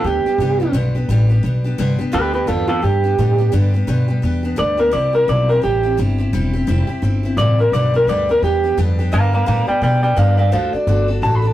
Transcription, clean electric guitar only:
0.05 0.72 G4 medium
2.13 2.33 G4 medium
2.13 2.33 B4 loud
2.34 2.47 G4 medium
2.34 2.48 B4 medium
2.47 2.67 F4 medium
2.47 2.68 A4 medium
2.68 2.82 F4 medium
2.68 2.83 A4 loud
2.83 3.51 G4 loud
4.59 4.79 D5 loud
4.79 4.93 A#4 medium
4.93 5.13 D5 medium
5.15 5.28 A#4 medium
5.29 5.49 D5 loud
5.50 5.63 A#4 medium
5.64 5.97 G4 loud
7.38 7.59 D5 loud
7.60 7.73 A#4 medium
7.73 7.94 D5 loud
7.96 8.09 A#4 loud
8.09 8.29 D5 loud
8.31 8.43 A#4 loud
8.44 8.77 G4 loud
9.13 9.33 F5 medium
9.13 9.34 A#5 medium
9.34 9.46 F5 medium
9.34 9.47 A#5 loud
9.47 9.67 F5 medium
9.47 9.68 A#5 loud
9.68 9.82 D5 medium
9.68 9.82 G5 medium
9.83 10.02 D5 medium
9.83 10.02 G5 loud
10.03 10.16 D5 medium
10.03 10.17 G5 medium
10.17 10.37 D5 medium
10.17 10.38 F5 medium
10.38 10.52 D5 medium
10.38 10.52 F5 medium
10.53 10.72 C5 medium
10.53 10.73 F5 loud
10.73 11.08 D5 medium
11.23 11.35 A5 loud
11.35 11.47 B5 medium
11.47 11.53 A5 medium

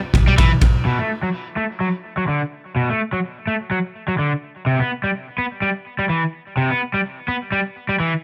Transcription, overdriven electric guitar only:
0.27 0.33 G3 medium
0.38 0.50 E3 medium
0.85 0.97 B2 medium
0.99 1.09 A3 medium
1.23 1.28 F#3 medium
1.57 1.64 A3 medium
1.80 1.87 F#3 medium
2.17 2.23 F#3 medium
2.28 2.41 D3 medium
2.76 2.88 B2 medium
2.89 3.00 A3 medium
3.13 3.18 F#3 medium
3.47 3.54 A3 medium
3.71 3.78 F#3 medium
4.08 4.14 F#3 medium
4.19 4.31 D3 medium
4.66 4.78 C3 medium
4.80 4.90 B3 medium
5.04 5.09 G3 medium
5.38 5.45 B3 medium
5.62 5.68 G3 medium
5.99 6.04 G3 medium
6.09 6.22 E3 medium
6.57 6.69 C3 medium
6.70 6.80 B3 medium
6.94 6.99 G3 medium
7.28 7.35 B3 medium
7.52 7.59 G3 medium
7.89 7.94 G3 medium
8.00 8.12 E3 medium

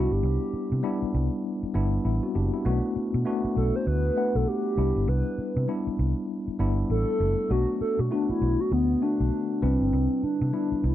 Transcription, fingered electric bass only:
0.11 0.20 G1 medium
0.23 0.36 C2 loud
0.53 muted fingered electric bass stroke soft
0.72 0.81 C3 loud
1.02 muted fingered electric bass stroke soft
1.14 1.28 C2 loud
1.63 muted fingered electric bass stroke soft
1.75 1.97 G1 loud
2.05 2.18 A1 medium
2.35 2.49 F#1 medium
2.66 2.79 B1 loud
2.96 muted fingered electric bass stroke medium
3.14 3.23 B2 medium
3.44 muted fingered electric bass stroke medium
3.57 3.70 B1 medium
3.87 4.09 D2 loud
4.35 4.44 B1 medium
4.78 4.91 C2 loud
4.96 5.05 G1 medium
5.08 5.21 C2 loud
5.38 muted fingered electric bass stroke soft
5.56 5.65 C3 loud
5.87 muted fingered electric bass stroke medium
5.99 6.12 C2 loud
6.48 muted fingered electric bass stroke soft
6.59 6.82 G1 medium
6.90 7.03 A1 medium
7.20 7.33 F#1 medium
7.50 7.64 B1 loud
7.81 muted fingered electric bass stroke soft
7.99 8.08 B2 medium
8.29 muted fingered electric bass stroke soft
8.41 8.55 B1 loud
8.72 8.94 D2 loud
9.20 9.29 B1 medium
9.63 9.76 C2 loud
9.81 9.90 G1 medium
9.93 10.06 C2 loud
10.23 muted fingered electric bass stroke medium
10.41 10.50 C3 loud
10.72 muted fingered electric bass stroke soft
10.84 10.95 C2 loud

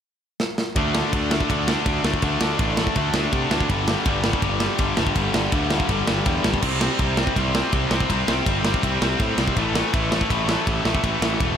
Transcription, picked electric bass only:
0.76 1.01 D2 medium
1.13 1.38 D2 medium
1.50 1.75 D2 medium
1.86 1.98 D2 medium
2.04 2.17 D2 medium
2.22 2.35 D2 loud
2.41 2.53 D2 medium
2.59 2.84 A1 medium
2.96 3.08 D2 medium
3.14 3.27 D2 medium
3.32 3.45 C3 medium
3.52 3.64 D2 medium
3.69 3.94 G1 medium
4.06 4.31 G1 medium
4.42 4.67 G1 medium
4.79 4.92 G1 medium
4.98 5.10 G1 medium
5.16 5.28 G1 medium
5.34 5.47 G1 medium
5.52 5.77 D2 medium
5.89 6.01 G1 medium
6.08 6.21 G1 medium
6.26 6.39 E2 medium
6.45 6.57 G1 medium
6.63 6.88 C2 loud
6.99 7.24 C2 loud
7.36 7.61 C2 medium
7.73 7.85 C2 medium
7.91 8.04 C2 medium
8.10 8.22 C2 loud
8.28 8.41 C2 medium
8.46 8.71 G1 medium
8.83 8.96 C2 medium
9.02 9.14 C2 medium
9.20 9.32 A2 loud
9.38 9.51 C2 medium
9.56 9.81 A1 loud
9.94 10.19 A1 medium
10.30 10.55 A1 medium
10.67 10.80 A1 medium
10.85 10.97 A1 medium
11.03 11.16 A1 loud
11.22 11.34 A1 medium
11.40 11.57 E1 medium

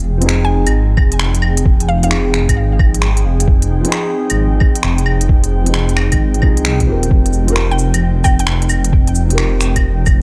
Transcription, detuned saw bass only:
0.00 0.65 F1 medium
0.67 0.97 G#1 medium
0.98 1.19 F1 medium
1.21 2.47 F1 medium
2.49 2.79 G#1 medium
2.80 3.24 G#1 loud
3.26 3.84 F1 medium
4.31 4.60 G#1 medium
4.84 6.11 F1 loud
6.13 6.42 G#1 medium
6.43 6.90 C2 medium
6.88 7.10 D#1 medium
7.11 7.92 F1 loud
7.95 8.24 F1 medium
8.25 8.46 F1 medium
8.48 9.75 F1 medium
9.76 10.06 F1 medium
10.07 10.22 F1 loud

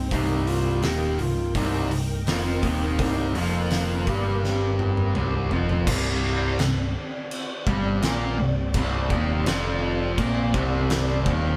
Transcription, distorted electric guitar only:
0.11 0.82 C2 medium
0.11 0.82 C3 loud
0.83 1.18 D#2 medium
0.83 1.18 D#3 loud
1.19 1.48 C2 medium
1.55 1.90 C2 medium
1.55 1.90 C3 loud
1.92 2.20 C2 medium
2.27 2.62 F2 medium
2.27 2.62 F3 loud
2.63 2.98 D#2 medium
2.63 2.99 D#3 medium
2.99 3.34 C2 medium
2.99 3.35 C3 loud
3.34 4.06 F2 medium
3.34 4.06 F3 loud
4.07 5.14 G2 loud
4.07 5.14 G3 loud
5.15 5.50 C2 loud
5.15 5.50 C3 loud
5.51 5.86 F2 medium
5.51 5.86 F3 loud
5.87 6.58 C2 medium
5.87 6.58 C3 loud
6.60 6.88 C2 medium
7.67 8.01 G2 loud
7.67 8.02 G3 loud
8.03 8.37 A#2 medium
8.03 8.38 A#3 loud
8.39 8.68 C2 medium
8.75 9.10 C2 medium
8.75 9.10 C3 loud
9.11 9.46 D#2 loud
9.11 9.46 D#3 loud
9.46 10.17 F2 loud
9.46 10.18 F3 loud
10.19 10.53 A#2 medium
10.19 10.54 A#3 loud
10.54 11.25 C2 loud
10.54 11.25 C3 loud
11.26 11.57 D#2 medium
11.26 11.57 D#3 loud

